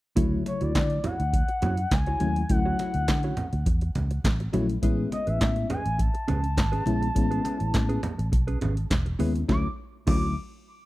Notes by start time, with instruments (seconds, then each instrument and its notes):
0.16 fingered electric bass D2, fm electric piano C#3 F#3 A3 E4, clean electric guitar E4 F#4 C#5, kick, closed hi-hat
0.46 soft synth lead C#5, muted clean electric guitar stroke, closed hi-hat, muted conga
0.61 fingered electric bass D2, clean electric guitar E4 F#4 C#5, soft synth lead D5, closed hi-hat
0.75 fingered electric bass D3, muted clean electric guitar stroke, kick, snare, clap, closed hi-hat, high conga
0.90 muted clean electric guitar stroke, closed hi-hat
1.04 clean electric guitar E4 F#4 C#5, soft synth lead F#5, closed hi-hat, low conga
1.19 fingered electric bass D2, muted clean electric guitar stroke, closed hi-hat
1.33 muted clean electric guitar stroke, kick, closed hi-hat
1.48 muted clean electric guitar stroke, closed hi-hat
1.62 fingered electric bass F#2, clean electric guitar E4 F#4 C#5, closed hi-hat, muted conga, low conga
1.77 muted clean electric guitar stroke, closed hi-hat
1.91 fingered electric bass C#2, soft synth lead G#5, muted clean electric guitar stroke, kick, snare, clap, closed hi-hat, high conga
2.06 clean electric guitar E4 F#4 C#5, closed hi-hat
2.20 fingered electric bass D#2, fm electric piano F#3 A3 C#4 E4, closed hi-hat, high conga
2.36 muted clean electric guitar stroke, closed hi-hat
2.49 fingered electric bass D2, fm electric piano F#3 A3 C#4 E4, soft synth lead F#5, muted clean electric guitar stroke, kick, closed hi-hat
2.65 clean electric guitar E4 F#4 C#5
2.79 clean electric guitar E4 F#4 C#5, closed hi-hat, muted conga
2.94 fingered electric bass D2, closed hi-hat
3.08 fingered electric bass D3, muted clean electric guitar stroke, kick, snare, clap, closed hi-hat, high conga
3.23 clean electric guitar E4 F#4 C#5, closed hi-hat
3.37 muted clean electric guitar stroke, closed hi-hat, low conga
3.53 fingered electric bass D2, muted clean electric guitar stroke, closed hi-hat
3.66 fingered electric bass E2, muted clean electric guitar stroke, kick, closed hi-hat, muted conga
3.81 muted clean electric guitar stroke, closed hi-hat
3.95 fingered electric bass C#2, closed hi-hat, muted conga, low conga
4.11 muted clean electric guitar stroke, closed hi-hat
4.24 fingered electric bass A1, muted clean electric guitar stroke, kick, snare, clap, closed hi-hat, high conga
4.40 muted clean electric guitar stroke, closed hi-hat
4.53 fingered electric bass A#1, fm electric piano F#3 A3 C#4 E4, clean electric guitar E4 F#4 C#5, closed hi-hat, high conga
4.70 closed hi-hat
4.82 fingered electric bass A1, fm electric piano G#3 B3 C#4 E4, clean electric guitar C#4 G#4 B4, kick, closed hi-hat
5.12 soft synth lead D#5, muted clean electric guitar stroke, closed hi-hat, muted conga
5.27 fingered electric bass A1, clean electric guitar C#4 G#4 B4, soft synth lead E5, closed hi-hat
5.40 fingered electric bass A2, muted clean electric guitar stroke, kick, snare, clap, closed hi-hat, high conga
5.56 muted clean electric guitar stroke, closed hi-hat
5.70 clean electric guitar C#4 G#4 B4, soft synth lead G#5, closed hi-hat, low conga
5.85 fingered electric bass A1, muted clean electric guitar stroke, closed hi-hat
5.98 soft synth lead A5, muted clean electric guitar stroke, kick, closed hi-hat
6.14 muted clean electric guitar stroke, closed hi-hat
6.28 fingered electric bass C#2, clean electric guitar C#4 G#4 B4, closed hi-hat, muted conga, low conga
6.43 muted clean electric guitar stroke, closed hi-hat
6.57 fingered electric bass G#1, muted clean electric guitar stroke, kick, snare, clap, closed hi-hat, high conga
6.72 clean electric guitar C#4 G#4 B4, closed hi-hat
6.86 fingered electric bass A#1, fm electric piano G#3 B3 C#4 E4, closed hi-hat, high conga
7.01 muted clean electric guitar stroke, closed hi-hat
7.15 fingered electric bass A1, fm electric piano G#3 B3 C#4 E4, muted clean electric guitar stroke, kick, closed hi-hat
7.31 clean electric guitar C#4 G#4 B4, closed hi-hat
7.44 clean electric guitar C#4 G#4 B4, closed hi-hat, muted conga
7.60 fingered electric bass A1, muted clean electric guitar stroke, closed hi-hat
7.74 fingered electric bass A2, muted clean electric guitar stroke, kick, snare, clap, closed hi-hat, high conga
7.89 clean electric guitar C#4 G#4 B4, closed hi-hat
8.03 muted clean electric guitar stroke, closed hi-hat, low conga
8.18 fingered electric bass A1, muted clean electric guitar stroke, closed hi-hat
8.32 fingered electric bass B1, muted clean electric guitar stroke, kick, closed hi-hat, muted conga
8.47 clean electric guitar C#4 G#4 B4, closed hi-hat
8.61 fingered electric bass G#1, clean electric guitar C#4 G#4 B4, closed hi-hat, muted conga, low conga
8.77 muted clean electric guitar stroke, closed hi-hat
8.90 fingered electric bass E1, muted clean electric guitar stroke, kick, snare, clap, closed hi-hat, high conga
9.06 muted clean electric guitar stroke, closed hi-hat
9.19 fingered electric bass D#2, fm electric piano G#3 B3 C#4 E4, clean electric guitar C#4 G#4 B4, open hi-hat, high conga
9.35 muted clean electric guitar stroke, closed hi-hat
9.48 fingered electric bass D2, fm electric piano F#3 A3 C#4 E4, clean electric guitar E4 F#4 C#5, soft synth lead D6, kick, snare, muted conga
10.07 fingered electric bass D2, fm electric piano F#3 A3 C#4 E4, clean electric guitar E4 F#4 C#5, soft synth lead D6, kick, crash, muted conga